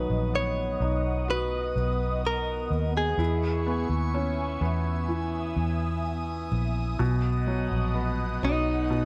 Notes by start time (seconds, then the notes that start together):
Already playing: D#3 F#3 B3 B4 D#5 F#5 D#6
0.10 A#1
0.34 B3 C#5
0.80 B1 D#4
1.28 F#4 B4
1.76 B1
2.27 A#4
2.71 D#2
2.97 G#4
3.18 E2 E4 E5 G#5 C#6
3.66 B3
3.89 D#2
4.14 C#4
4.61 E2 B3
5.08 E3 D#6
5.56 E2
6.52 A#1
6.99 B1 B2 B3 D#5 F#5
7.47 F#3
7.71 A#1
7.94 B3
8.43 B1 F#3 D#4
8.90 B2 C#6